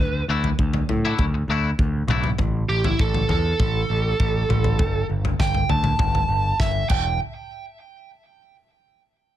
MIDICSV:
0, 0, Header, 1, 6, 480
1, 0, Start_track
1, 0, Tempo, 600601
1, 1912, Time_signature, 4, 2, 24, 8
1, 7488, End_track
2, 0, Start_track
2, 0, Title_t, "Lead electric guitar"
2, 0, Program_c, 0, 29
2, 0, Note_on_c, 0, 71, 101
2, 195, Note_off_c, 0, 71, 0
2, 2151, Note_on_c, 0, 67, 101
2, 2268, Note_off_c, 0, 67, 0
2, 2277, Note_on_c, 0, 64, 91
2, 2391, Note_off_c, 0, 64, 0
2, 2403, Note_on_c, 0, 69, 104
2, 2631, Note_off_c, 0, 69, 0
2, 2646, Note_on_c, 0, 69, 107
2, 4047, Note_off_c, 0, 69, 0
2, 4318, Note_on_c, 0, 79, 109
2, 4548, Note_off_c, 0, 79, 0
2, 4553, Note_on_c, 0, 81, 99
2, 5251, Note_off_c, 0, 81, 0
2, 5275, Note_on_c, 0, 76, 101
2, 5505, Note_off_c, 0, 76, 0
2, 5508, Note_on_c, 0, 79, 102
2, 5742, Note_off_c, 0, 79, 0
2, 7488, End_track
3, 0, Start_track
3, 0, Title_t, "Clean electric guitar"
3, 0, Program_c, 1, 27
3, 234, Note_on_c, 1, 57, 86
3, 241, Note_on_c, 1, 62, 82
3, 241, Note_on_c, 1, 66, 91
3, 245, Note_on_c, 1, 64, 86
3, 388, Note_off_c, 1, 57, 0
3, 392, Note_off_c, 1, 62, 0
3, 392, Note_off_c, 1, 66, 0
3, 394, Note_off_c, 1, 64, 0
3, 839, Note_on_c, 1, 64, 94
3, 847, Note_on_c, 1, 66, 93
3, 849, Note_on_c, 1, 57, 74
3, 849, Note_on_c, 1, 62, 80
3, 991, Note_off_c, 1, 64, 0
3, 995, Note_off_c, 1, 66, 0
3, 996, Note_off_c, 1, 57, 0
3, 996, Note_off_c, 1, 62, 0
3, 1198, Note_on_c, 1, 57, 83
3, 1201, Note_on_c, 1, 62, 85
3, 1206, Note_on_c, 1, 66, 84
3, 1210, Note_on_c, 1, 64, 94
3, 1351, Note_off_c, 1, 57, 0
3, 1352, Note_off_c, 1, 62, 0
3, 1355, Note_off_c, 1, 66, 0
3, 1357, Note_off_c, 1, 64, 0
3, 1679, Note_on_c, 1, 57, 81
3, 1683, Note_on_c, 1, 62, 92
3, 1684, Note_on_c, 1, 66, 88
3, 1691, Note_on_c, 1, 64, 95
3, 1832, Note_off_c, 1, 57, 0
3, 1834, Note_off_c, 1, 62, 0
3, 1834, Note_off_c, 1, 66, 0
3, 1838, Note_off_c, 1, 64, 0
3, 7488, End_track
4, 0, Start_track
4, 0, Title_t, "Picked electric bass"
4, 0, Program_c, 2, 34
4, 0, Note_on_c, 2, 38, 85
4, 175, Note_off_c, 2, 38, 0
4, 227, Note_on_c, 2, 38, 79
4, 413, Note_off_c, 2, 38, 0
4, 474, Note_on_c, 2, 38, 89
4, 657, Note_off_c, 2, 38, 0
4, 715, Note_on_c, 2, 45, 83
4, 898, Note_off_c, 2, 45, 0
4, 949, Note_on_c, 2, 38, 86
4, 1135, Note_off_c, 2, 38, 0
4, 1183, Note_on_c, 2, 38, 84
4, 1371, Note_off_c, 2, 38, 0
4, 1429, Note_on_c, 2, 38, 86
4, 1615, Note_off_c, 2, 38, 0
4, 1659, Note_on_c, 2, 35, 91
4, 1849, Note_off_c, 2, 35, 0
4, 1912, Note_on_c, 2, 33, 90
4, 2097, Note_off_c, 2, 33, 0
4, 2154, Note_on_c, 2, 33, 83
4, 2338, Note_off_c, 2, 33, 0
4, 2393, Note_on_c, 2, 33, 89
4, 2578, Note_off_c, 2, 33, 0
4, 2627, Note_on_c, 2, 40, 82
4, 2814, Note_off_c, 2, 40, 0
4, 2873, Note_on_c, 2, 33, 86
4, 3058, Note_off_c, 2, 33, 0
4, 3116, Note_on_c, 2, 33, 85
4, 3300, Note_off_c, 2, 33, 0
4, 3355, Note_on_c, 2, 33, 88
4, 3539, Note_off_c, 2, 33, 0
4, 3588, Note_on_c, 2, 33, 83
4, 3832, Note_on_c, 2, 31, 96
4, 3844, Note_off_c, 2, 33, 0
4, 4017, Note_off_c, 2, 31, 0
4, 4071, Note_on_c, 2, 31, 80
4, 4256, Note_off_c, 2, 31, 0
4, 4314, Note_on_c, 2, 31, 91
4, 4498, Note_off_c, 2, 31, 0
4, 4550, Note_on_c, 2, 38, 83
4, 4736, Note_off_c, 2, 38, 0
4, 4790, Note_on_c, 2, 31, 92
4, 4975, Note_off_c, 2, 31, 0
4, 5025, Note_on_c, 2, 31, 85
4, 5212, Note_off_c, 2, 31, 0
4, 5272, Note_on_c, 2, 31, 90
4, 5457, Note_off_c, 2, 31, 0
4, 5517, Note_on_c, 2, 28, 96
4, 5737, Note_off_c, 2, 28, 0
4, 7488, End_track
5, 0, Start_track
5, 0, Title_t, "Muted clean electric guitar strokes"
5, 590, Note_on_c, 9, 29, 50
5, 670, Note_off_c, 9, 29, 0
5, 1073, Note_on_c, 9, 29, 52
5, 1153, Note_off_c, 9, 29, 0
5, 7488, End_track
6, 0, Start_track
6, 0, Title_t, "Drums"
6, 351, Note_on_c, 9, 43, 82
6, 431, Note_off_c, 9, 43, 0
6, 470, Note_on_c, 9, 36, 103
6, 550, Note_off_c, 9, 36, 0
6, 587, Note_on_c, 9, 43, 82
6, 667, Note_off_c, 9, 43, 0
6, 711, Note_on_c, 9, 43, 83
6, 791, Note_off_c, 9, 43, 0
6, 948, Note_on_c, 9, 43, 90
6, 950, Note_on_c, 9, 36, 113
6, 1028, Note_off_c, 9, 43, 0
6, 1030, Note_off_c, 9, 36, 0
6, 1430, Note_on_c, 9, 36, 105
6, 1510, Note_off_c, 9, 36, 0
6, 1666, Note_on_c, 9, 43, 81
6, 1666, Note_on_c, 9, 47, 78
6, 1745, Note_off_c, 9, 43, 0
6, 1745, Note_off_c, 9, 47, 0
6, 1787, Note_on_c, 9, 43, 82
6, 1867, Note_off_c, 9, 43, 0
6, 1906, Note_on_c, 9, 43, 85
6, 1910, Note_on_c, 9, 36, 107
6, 1986, Note_off_c, 9, 43, 0
6, 1990, Note_off_c, 9, 36, 0
6, 2273, Note_on_c, 9, 43, 88
6, 2353, Note_off_c, 9, 43, 0
6, 2393, Note_on_c, 9, 36, 111
6, 2473, Note_off_c, 9, 36, 0
6, 2513, Note_on_c, 9, 43, 82
6, 2593, Note_off_c, 9, 43, 0
6, 2631, Note_on_c, 9, 43, 82
6, 2711, Note_off_c, 9, 43, 0
6, 2874, Note_on_c, 9, 36, 114
6, 2875, Note_on_c, 9, 43, 86
6, 2954, Note_off_c, 9, 36, 0
6, 2955, Note_off_c, 9, 43, 0
6, 3355, Note_on_c, 9, 36, 109
6, 3435, Note_off_c, 9, 36, 0
6, 3596, Note_on_c, 9, 43, 83
6, 3596, Note_on_c, 9, 47, 73
6, 3676, Note_off_c, 9, 43, 0
6, 3676, Note_off_c, 9, 47, 0
6, 3711, Note_on_c, 9, 43, 83
6, 3791, Note_off_c, 9, 43, 0
6, 3829, Note_on_c, 9, 43, 90
6, 3831, Note_on_c, 9, 36, 113
6, 3909, Note_off_c, 9, 43, 0
6, 3911, Note_off_c, 9, 36, 0
6, 4194, Note_on_c, 9, 43, 85
6, 4274, Note_off_c, 9, 43, 0
6, 4313, Note_on_c, 9, 36, 110
6, 4320, Note_on_c, 9, 38, 74
6, 4393, Note_off_c, 9, 36, 0
6, 4400, Note_off_c, 9, 38, 0
6, 4432, Note_on_c, 9, 43, 79
6, 4512, Note_off_c, 9, 43, 0
6, 4551, Note_on_c, 9, 43, 88
6, 4631, Note_off_c, 9, 43, 0
6, 4665, Note_on_c, 9, 43, 80
6, 4665, Note_on_c, 9, 47, 77
6, 4745, Note_off_c, 9, 43, 0
6, 4745, Note_off_c, 9, 47, 0
6, 4787, Note_on_c, 9, 43, 92
6, 4790, Note_on_c, 9, 36, 111
6, 4867, Note_off_c, 9, 43, 0
6, 4870, Note_off_c, 9, 36, 0
6, 4913, Note_on_c, 9, 43, 77
6, 4993, Note_off_c, 9, 43, 0
6, 5272, Note_on_c, 9, 36, 111
6, 5274, Note_on_c, 9, 38, 60
6, 5352, Note_off_c, 9, 36, 0
6, 5354, Note_off_c, 9, 38, 0
6, 5511, Note_on_c, 9, 49, 92
6, 5514, Note_on_c, 9, 36, 103
6, 5591, Note_off_c, 9, 49, 0
6, 5594, Note_off_c, 9, 36, 0
6, 7488, End_track
0, 0, End_of_file